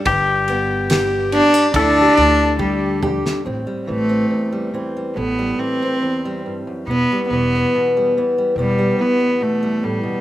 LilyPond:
<<
  \new Staff \with { instrumentName = "Pedal steel guitar" } { \time 4/4 \key a \dorian \tempo 4 = 70 g'2 a'4. r8 | r1 | r1 | }
  \new Staff \with { instrumentName = "Felt piano" } { \time 4/4 \key a \dorian r2 e'16 g'4~ g'16 r8 | r1 | r1 | }
  \new Staff \with { instrumentName = "Cello" } { \time 4/4 \key a \dorian r4. d'8 d'4 g8. r16 | r8 a4 r8 b8 c'4 r8 | b8 b4 r8 g8 b8 a8 g8 | }
  \new Staff \with { instrumentName = "Steel-string acoustic guitar" } { \clef bass \time 4/4 \key a \dorian << { g8 b8 g'8 b16 d'16 r8 d'8 g'8 g'8 | c'16 g8 c'8 g16 c'16 g8 g8 c'8 g8. | b16 g8 b8 g16 b16 g16 b16 g8 b8 g8. | } \\ { g,2 d2 | a,8 e8 e,8 e8 a,8 e8 e,8 g,16 fis,16 | e,8 e8 b,8 e8 e,8 e8 b,8 a,16 b,16 | } >> }
  \new Staff \with { instrumentName = "Upright bass" } { \clef bass \time 4/4 \key a \dorian g,,2 d,8 d,4. | a,,16 r16 a,,8 r4 a,,8 r4. | e,,16 r16 e,,8 r4 e,,8 r4. | }
  \new DrumStaff \with { instrumentName = "Drums" } \drummode { \time 4/4 <bd cymr>8 cymr8 <cymr sn>8 cymr8 <bd cymr>8 cymr8 bd8 toml16 sn16 | r4 r4 r4 r4 | r4 r4 r4 r4 | }
>>